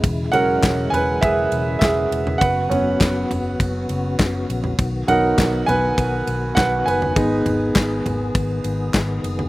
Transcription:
<<
  \new Staff \with { instrumentName = "Grand piano" } { \time 4/4 \key b \major \tempo 4 = 101 r8 <ais' fis''>4 <b' gis''>8 <gis' e''>4 <gis' e''>4 | <b' fis''>2. r4 | r8 <ais' fis''>4 <b' gis''>4. <b' fis''>8 <b' gis''>8~ | <b' gis''>4. r2 r8 | }
  \new Staff \with { instrumentName = "Grand piano" } { \time 4/4 \key b \major r8 <fis gis cis'>4. r2 | r8 <fis b cis'>8 r2. | r8 <fis b dis'>2.~ <fis b dis'>8 | <gis b dis'>4. r2 r8 | }
  \new Staff \with { instrumentName = "Tonewheel organ" } { \time 4/4 \key b \major e'1 | fis'1 | fis'1 | gis'1 | }
  \new Staff \with { instrumentName = "Tonewheel organ" } { \clef bass \time 4/4 \key b \major << { gis1 | b1~ | b1~ | b1 | } \\ { cis1~ | cis1 | dis1 | dis1 | } >> }
  \new Staff \with { instrumentName = "Fingered electric bass" } { \clef bass \time 4/4 \key b \major e,,8 e,,8 e,,8 e,,8 e,,8 e,,8 e,,8 e,,8 | fis,,8 fis,,8 fis,,8 fis,,8 fis,,8 fis,,8 fis,,8 ais,,8 | b,,8 b,,8 b,,8 b,,8 b,,8 b,,8 b,,8 fis,,8 | gis,,8 gis,,8 gis,,8 gis,,8 gis,,8 gis,,8 gis,,8 fis,,8 | }
  \new DrumStaff \with { instrumentName = "Drums" } \drummode { \time 4/4 <bd cymr>8 <cymr tomfh>8 <hc bd cymr sn>8 <cymr tomfh>8 <bd cymr>8 cymr8 <hc bd cymr sn>8 cymr16 tomfh16 | <bd cymr>8 <cymr tomfh>8 <hc bd cymr sn>8 <cymr tomfh>8 <bd cymr>8 cymr8 <hc bd cymr sn>8 cymr16 tomfh16 | <bd cymr>8 <cymr tomfh>8 <hc bd cymr sn>8 <cymr tomfh>8 <bd cymr>8 cymr8 <hc bd cymr sn>8 cymr16 tomfh16 | <bd cymr>8 <cymr tomfh>8 <hc bd cymr sn>8 <cymr tomfh>8 <bd cymr>8 cymr8 <hc bd cymr sn>8 cymr16 tomfh16 | }
>>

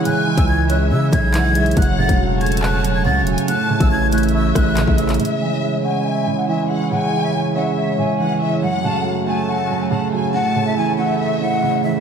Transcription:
<<
  \new Staff \with { instrumentName = "Flute" } { \time 4/4 \key cis \minor \tempo 4 = 140 fis'''8. e'''16 gis'''8 fis'''8 e'''8 gis'''4. | fis'''8 a'''8 r8 gis'''8 fis'''8. gis'''16 a'''8 r8 | fis'''8. e'''16 gis'''8 fis'''8 e'''8 fis'''4 e'''8 | e''8 gis''8 r8 fis''8 e''8. fis''16 gis''8 r8 |
fis''8. e''16 gis''8 fis''8 e''8 gis''4. | fis''8 a''8 r8 gis''8 fis''8. gis''16 a''8 r8 | fis''8. e''16 gis''8 fis''8 e''8 fis''4 e''8 | }
  \new Staff \with { instrumentName = "Violin section" } { \time 4/4 \key cis \minor gis''4. e''4. fis''8 e''8 | fis''4. a''4. fis''8 gis''8 | a''4. e''2~ e''8 | e''4. gis''4. e''8 fis''8 |
gis''4. e''4. fis''8 e''8 | fis''4. a''4. fis''8 gis''8 | a''4. e''2~ e''8 | }
  \new Staff \with { instrumentName = "Analog synth pad" } { \time 4/4 \key cis \minor << { cis''1 | cis''1~ | cis''1 | cis''1~ |
cis''1~ | cis''1~ | cis''1 | } \\ { <gis e'>1 | <a fis'>1 | <a e'>1 | <gis e'>1~ |
<gis e'>1 | <a fis'>1 | <a e'>1 | } >> }
  \new Staff \with { instrumentName = "Grand piano" } { \clef bass \time 4/4 \key cis \minor <cis e gis>8 e8 gis8 cis'4 cis8 e8 gis8 | fis,8 cis8 fis8 a4 fis,8 cis8 fis8 | a,8 cis8 e8 a4 a,8 cis8 e8 | cis8 e8 gis8 cis'4 cis8 e8 gis8 |
cis8 e8 gis8 cis'4 cis8 e8 gis8 | fis,8 cis8 fis8 a4 fis,8 cis8 fis8 | a,8 cis8 e8 a4 a,8 cis8 e8 | }
  \new Staff \with { instrumentName = "808-style bass" } { \clef bass \time 4/4 \key cis \minor r8. cis,4~ cis,16 cis8 b,,4. | fis,,8. e,,2~ e,,16 cis,16. e,,16. r16 | r8. a,,4.~ a,,16 a,,8. a,,8. | r1 |
r1 | r1 | r1 | }
  \new DrumStaff \with { instrumentName = "Drums" } \drummode { \time 4/4 hh8. <hh bd>16 r8 hh8 r8 <hh bd>8 <hc hh>8 hh16 hh32 hh32 | <hh bd>32 hh8 r32 <hh bd>16 r8 hh32 hh32 hh32 hh32 hc8 hh8 r8 hh16 hh16 | hh8. <hh bd>16 r8 hh32 hh32 hh32 hh32 r8 <hh bd ss>8 <hc hh>16 bd16 hh16 <hc hh>32 hh32 | hh32 hh8. r32 r4 r4 r4 |
r4 r4 r4 r4 | r4 r4 r4 r4 | r4 r4 r4 r4 | }
>>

